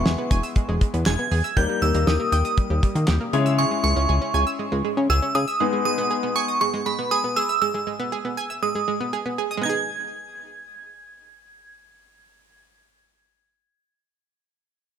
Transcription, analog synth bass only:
0, 0, Header, 1, 2, 480
1, 0, Start_track
1, 0, Key_signature, 5, "minor"
1, 0, Tempo, 504202
1, 1493, Time_signature, 4, 2, 24, 8
1, 14261, End_track
2, 0, Start_track
2, 0, Title_t, "Analog synth bass"
2, 0, Program_c, 0, 38
2, 53, Note_on_c, 0, 28, 108
2, 154, Note_off_c, 0, 28, 0
2, 294, Note_on_c, 0, 28, 101
2, 395, Note_off_c, 0, 28, 0
2, 653, Note_on_c, 0, 28, 104
2, 754, Note_off_c, 0, 28, 0
2, 893, Note_on_c, 0, 40, 99
2, 994, Note_off_c, 0, 40, 0
2, 1013, Note_on_c, 0, 28, 107
2, 1114, Note_off_c, 0, 28, 0
2, 1252, Note_on_c, 0, 40, 102
2, 1354, Note_off_c, 0, 40, 0
2, 1492, Note_on_c, 0, 39, 111
2, 1594, Note_off_c, 0, 39, 0
2, 1732, Note_on_c, 0, 39, 104
2, 1834, Note_off_c, 0, 39, 0
2, 1852, Note_on_c, 0, 39, 107
2, 1954, Note_off_c, 0, 39, 0
2, 1973, Note_on_c, 0, 39, 105
2, 2074, Note_off_c, 0, 39, 0
2, 2212, Note_on_c, 0, 39, 105
2, 2314, Note_off_c, 0, 39, 0
2, 2572, Note_on_c, 0, 39, 98
2, 2674, Note_off_c, 0, 39, 0
2, 2812, Note_on_c, 0, 51, 105
2, 2914, Note_off_c, 0, 51, 0
2, 2933, Note_on_c, 0, 39, 112
2, 3034, Note_off_c, 0, 39, 0
2, 3173, Note_on_c, 0, 49, 106
2, 3478, Note_off_c, 0, 49, 0
2, 3653, Note_on_c, 0, 37, 101
2, 3754, Note_off_c, 0, 37, 0
2, 3772, Note_on_c, 0, 37, 110
2, 3874, Note_off_c, 0, 37, 0
2, 3892, Note_on_c, 0, 37, 98
2, 3994, Note_off_c, 0, 37, 0
2, 4132, Note_on_c, 0, 37, 112
2, 4234, Note_off_c, 0, 37, 0
2, 4493, Note_on_c, 0, 37, 99
2, 4594, Note_off_c, 0, 37, 0
2, 4733, Note_on_c, 0, 49, 105
2, 4834, Note_off_c, 0, 49, 0
2, 4853, Note_on_c, 0, 37, 103
2, 4954, Note_off_c, 0, 37, 0
2, 5093, Note_on_c, 0, 49, 100
2, 5194, Note_off_c, 0, 49, 0
2, 14261, End_track
0, 0, End_of_file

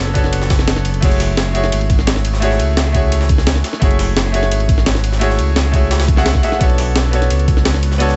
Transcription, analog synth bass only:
0, 0, Header, 1, 2, 480
1, 0, Start_track
1, 0, Key_signature, 3, "minor"
1, 0, Tempo, 348837
1, 1412, Time_signature, 4, 2, 24, 8
1, 11230, End_track
2, 0, Start_track
2, 0, Title_t, "Analog synth bass"
2, 0, Program_c, 0, 38
2, 0, Note_on_c, 0, 30, 80
2, 1152, Note_off_c, 0, 30, 0
2, 1171, Note_on_c, 0, 30, 84
2, 1388, Note_off_c, 0, 30, 0
2, 1412, Note_on_c, 0, 30, 103
2, 2353, Note_off_c, 0, 30, 0
2, 2372, Note_on_c, 0, 32, 103
2, 3573, Note_on_c, 0, 37, 79
2, 3594, Note_off_c, 0, 32, 0
2, 4994, Note_off_c, 0, 37, 0
2, 5253, Note_on_c, 0, 30, 105
2, 6193, Note_off_c, 0, 30, 0
2, 6212, Note_on_c, 0, 32, 104
2, 7412, Note_on_c, 0, 37, 83
2, 7433, Note_off_c, 0, 32, 0
2, 8833, Note_off_c, 0, 37, 0
2, 9091, Note_on_c, 0, 35, 105
2, 10032, Note_off_c, 0, 35, 0
2, 10054, Note_on_c, 0, 37, 102
2, 11230, Note_off_c, 0, 37, 0
2, 11230, End_track
0, 0, End_of_file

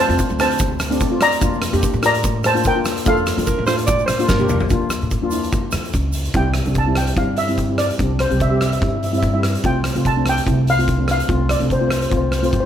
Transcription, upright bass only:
0, 0, Header, 1, 2, 480
1, 0, Start_track
1, 0, Key_signature, -1, "major"
1, 0, Tempo, 411241
1, 1654, Time_signature, 4, 2, 24, 8
1, 14771, End_track
2, 0, Start_track
2, 0, Title_t, "Upright bass"
2, 0, Program_c, 0, 32
2, 106, Note_on_c, 0, 41, 93
2, 204, Note_off_c, 0, 41, 0
2, 351, Note_on_c, 0, 38, 92
2, 1178, Note_off_c, 0, 38, 0
2, 1653, Note_on_c, 0, 41, 92
2, 1970, Note_off_c, 0, 41, 0
2, 2021, Note_on_c, 0, 41, 99
2, 2119, Note_off_c, 0, 41, 0
2, 2259, Note_on_c, 0, 45, 97
2, 3089, Note_off_c, 0, 45, 0
2, 3576, Note_on_c, 0, 41, 81
2, 3890, Note_off_c, 0, 41, 0
2, 3942, Note_on_c, 0, 41, 94
2, 4037, Note_off_c, 0, 41, 0
2, 4184, Note_on_c, 0, 45, 88
2, 4694, Note_off_c, 0, 45, 0
2, 4772, Note_on_c, 0, 45, 76
2, 4985, Note_off_c, 0, 45, 0
2, 5009, Note_on_c, 0, 43, 79
2, 5224, Note_off_c, 0, 43, 0
2, 5255, Note_on_c, 0, 41, 83
2, 5467, Note_off_c, 0, 41, 0
2, 5495, Note_on_c, 0, 41, 83
2, 5808, Note_off_c, 0, 41, 0
2, 5863, Note_on_c, 0, 45, 77
2, 6095, Note_off_c, 0, 45, 0
2, 6095, Note_on_c, 0, 41, 81
2, 6609, Note_off_c, 0, 41, 0
2, 6685, Note_on_c, 0, 41, 88
2, 6894, Note_off_c, 0, 41, 0
2, 6927, Note_on_c, 0, 37, 89
2, 7343, Note_off_c, 0, 37, 0
2, 7401, Note_on_c, 0, 36, 78
2, 7721, Note_off_c, 0, 36, 0
2, 7772, Note_on_c, 0, 36, 74
2, 8289, Note_off_c, 0, 36, 0
2, 8364, Note_on_c, 0, 43, 82
2, 9200, Note_off_c, 0, 43, 0
2, 9327, Note_on_c, 0, 36, 71
2, 9646, Note_off_c, 0, 36, 0
2, 9695, Note_on_c, 0, 36, 73
2, 10211, Note_off_c, 0, 36, 0
2, 10291, Note_on_c, 0, 43, 92
2, 11125, Note_off_c, 0, 43, 0
2, 11250, Note_on_c, 0, 36, 76
2, 11570, Note_off_c, 0, 36, 0
2, 11622, Note_on_c, 0, 36, 75
2, 12138, Note_off_c, 0, 36, 0
2, 12215, Note_on_c, 0, 36, 93
2, 13050, Note_off_c, 0, 36, 0
2, 13178, Note_on_c, 0, 36, 78
2, 13496, Note_off_c, 0, 36, 0
2, 13544, Note_on_c, 0, 36, 70
2, 14061, Note_off_c, 0, 36, 0
2, 14144, Note_on_c, 0, 36, 81
2, 14560, Note_off_c, 0, 36, 0
2, 14622, Note_on_c, 0, 31, 71
2, 14771, Note_off_c, 0, 31, 0
2, 14771, End_track
0, 0, End_of_file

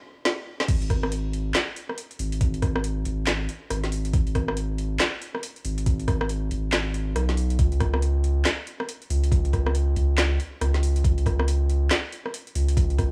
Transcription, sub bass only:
0, 0, Header, 1, 2, 480
1, 0, Start_track
1, 0, Tempo, 431655
1, 759, Time_signature, 4, 2, 24, 8
1, 14585, End_track
2, 0, Start_track
2, 0, Title_t, "Sub bass"
2, 0, Program_c, 0, 38
2, 762, Note_on_c, 0, 32, 97
2, 1705, Note_off_c, 0, 32, 0
2, 2436, Note_on_c, 0, 32, 99
2, 3383, Note_off_c, 0, 32, 0
2, 3398, Note_on_c, 0, 32, 95
2, 3864, Note_off_c, 0, 32, 0
2, 4117, Note_on_c, 0, 32, 99
2, 4583, Note_off_c, 0, 32, 0
2, 4597, Note_on_c, 0, 32, 95
2, 5543, Note_off_c, 0, 32, 0
2, 6278, Note_on_c, 0, 32, 98
2, 7224, Note_off_c, 0, 32, 0
2, 7240, Note_on_c, 0, 32, 96
2, 7945, Note_off_c, 0, 32, 0
2, 7957, Note_on_c, 0, 35, 99
2, 8423, Note_off_c, 0, 35, 0
2, 8439, Note_on_c, 0, 37, 98
2, 9384, Note_off_c, 0, 37, 0
2, 10119, Note_on_c, 0, 37, 100
2, 11064, Note_off_c, 0, 37, 0
2, 11079, Note_on_c, 0, 37, 98
2, 11544, Note_off_c, 0, 37, 0
2, 11799, Note_on_c, 0, 37, 101
2, 12264, Note_off_c, 0, 37, 0
2, 12280, Note_on_c, 0, 37, 99
2, 13225, Note_off_c, 0, 37, 0
2, 13958, Note_on_c, 0, 37, 98
2, 14585, Note_off_c, 0, 37, 0
2, 14585, End_track
0, 0, End_of_file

